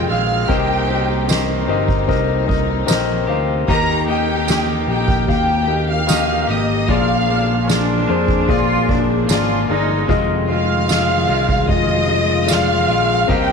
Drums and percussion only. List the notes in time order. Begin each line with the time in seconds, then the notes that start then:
0.10 ride
0.49 kick, ride
0.70 ride
0.89 ride
1.29 snare, ride, tambourine
1.69 ride
1.88 kick
2.09 kick, ride
2.49 kick, ride
2.88 snare, ride, tambourine
3.29 ride
3.68 kick, ride
3.88 ride
4.09 ride
4.48 snare, ride, tambourine
4.89 ride
5.08 kick
5.28 kick, ride
5.69 ride
5.89 ride
6.08 snare, ride, tambourine
6.48 ride
6.88 kick, ride
7.29 ride
7.69 snare, ride, tambourine
8.09 ride
8.28 kick
8.49 kick, ride
8.89 kick, ride
9.09 ride
9.29 snare, ride, tambourine
9.69 ride
10.08 kick, ride
10.29 ride
10.49 ride
10.89 snare, ride, tambourine
11.29 ride
11.49 kick
11.69 kick, ride
12.10 ride
12.29 ride
12.48 snare, ride, tambourine
12.90 ride
13.29 kick, ride